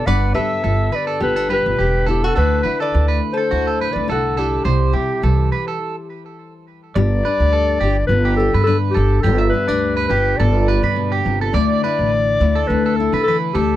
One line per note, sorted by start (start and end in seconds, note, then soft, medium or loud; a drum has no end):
0.00 0.62 D3 medium
0.06 0.31 G1 medium
0.06 1.48 G2 medium
0.06 1.21 B3 medium
0.06 0.34 B4 medium
0.06 0.34 D5 medium
0.06 0.34 F#5 medium
0.34 0.48 G2 medium
0.34 1.78 G4 medium
0.34 0.62 A4 medium
0.34 0.88 B4 medium
0.34 0.96 E5 loud
0.64 0.88 G1 loud
0.64 2.35 D3 medium
0.64 0.91 A4 medium
0.92 1.21 B4 medium
0.92 1.07 B4 medium
0.92 1.22 D5 medium
1.07 1.34 A4 medium
1.20 1.59 G1 medium
1.20 1.36 B3 medium
1.20 1.47 G4 medium
1.20 1.48 B4 medium
1.36 2.36 D4 soft
1.36 1.49 A4 medium
1.49 2.32 G2 medium
1.49 2.03 G4 medium
1.49 1.77 B4 medium
1.49 2.05 B4 medium
1.66 1.77 G1 medium
1.79 2.29 E1 medium
1.79 2.06 G4 medium
1.79 2.34 G4 medium
2.06 2.33 B3 medium
2.06 2.24 E4 medium
2.06 2.25 G4 medium
2.06 2.34 A4 medium
2.23 2.35 F#4 medium
2.23 2.36 A4 medium
2.36 2.61 D2 loud
2.36 4.66 D3 medium
2.36 2.77 F#4 medium
2.36 2.63 A4 medium
2.36 2.78 B4 medium
2.36 muted nylon-string guitar stroke medium
2.63 2.78 D3 medium
2.63 3.52 E4 medium
2.63 2.79 B4 medium
2.80 3.07 A4 medium
2.80 3.20 B4 medium
2.80 3.20 D5 medium
2.94 3.19 D2 loud
2.94 4.63 A3 medium
3.08 3.36 B4 medium
3.33 3.86 A4 medium
3.33 3.94 C5 medium
3.38 3.50 A4 medium
3.51 3.90 D2 medium
3.51 4.07 E4 medium
3.51 3.66 F#4 medium
3.67 3.79 A4 medium
3.80 4.64 A2 medium
3.80 4.08 B4 medium
3.92 4.07 D2 medium
3.92 4.10 B4 medium
3.92 4.10 D5 medium
4.08 4.59 C2 medium
4.08 4.92 E4 medium
4.08 4.38 F#4 medium
4.08 4.36 A4 medium
4.08 4.41 A4 medium
4.37 4.63 D4 medium
4.37 6.39 E4 medium
4.37 6.39 G4 medium
4.37 4.65 A4 medium
4.64 4.90 C2 loud
4.64 5.23 C3 medium
4.64 8.10 G3 medium
4.64 4.93 C5 medium
4.93 6.96 E4 medium
4.93 5.21 G4 medium
5.22 5.48 C2 loud
5.22 5.77 E3 medium
5.22 5.51 A4 medium
5.52 5.67 B4 medium
5.68 5.95 A4 medium
6.95 7.21 G1 loud
6.95 8.66 G2 medium
6.95 7.83 G4 medium
6.95 8.06 D5 loud
6.95 muted clean electric guitar stroke loud
7.25 8.67 D4 medium
7.25 7.52 B4 medium
7.40 7.76 D2 medium
7.53 7.80 A4 medium
7.80 8.06 G1 medium
7.80 10.09 D3 medium
7.80 7.96 G4 medium
7.80 8.38 G4 medium
8.07 8.48 G1 loud
8.07 8.35 B4 medium
8.11 8.97 B3 medium
8.25 8.53 G4 medium
8.37 9.22 G4 medium
8.37 8.63 A4 medium
8.54 8.90 G2 medium
8.54 8.66 B4 medium
8.63 9.21 G2 medium
8.63 8.77 A4 loud
8.63 8.95 B4 medium
8.68 9.53 D4 medium
8.91 9.22 G4 medium
8.91 9.23 A4 medium
8.97 9.21 G1 loud
9.21 9.49 G1 loud
9.21 9.39 G4 medium
9.21 9.49 A4 loud
9.25 11.51 G2 medium
9.25 10.09 G4 medium
9.38 9.67 E5 medium
9.49 10.05 B4 loud
9.53 9.68 B3 medium
9.68 10.05 D2 medium
9.68 11.54 D4 medium
9.68 9.96 D5 medium
9.97 10.10 B4 medium
10.07 10.35 G1 medium
10.07 11.53 D3 medium
10.07 10.38 G4 medium
10.07 10.68 G4 medium
10.07 10.39 B4 medium
10.37 10.78 G1 loud
10.37 11.51 B3 medium
10.37 10.67 A4 loud
10.37 11.24 D5 medium
10.68 11.52 G4 medium
10.68 10.83 B4 medium
10.83 11.19 G2 loud
10.83 11.11 B4 medium
10.96 11.24 B2 medium
11.12 11.39 G4 medium
11.25 11.50 G1 medium
11.25 11.54 C3 medium
11.41 11.54 A4 medium
11.53 11.79 D2 loud
11.53 13.26 D3 medium
11.53 12.40 A3 medium
11.53 12.70 D4 medium
11.53 11.84 E4 medium
11.53 12.69 D5 loud
11.53 11.81 D5 loud
11.84 12.41 E4 medium
11.84 12.11 B4 medium
11.99 12.35 A1 medium
12.40 12.65 D2 medium
12.40 13.76 A3 medium
12.40 12.98 E4 medium
12.55 12.83 A4 medium
12.67 13.07 D2 loud
12.67 13.76 D4 medium
12.67 12.97 B4 loud
12.86 13.12 A4 medium
12.96 13.23 A4 medium
13.00 13.76 E4 medium
13.13 13.49 D3 loud
13.13 13.26 B4 medium
13.23 13.37 A4 loud
13.28 13.55 E3 medium
13.28 13.54 B4 medium
13.54 13.76 D2 loud
13.54 13.76 D3 medium
13.54 13.76 G4 medium
13.54 13.76 A4 medium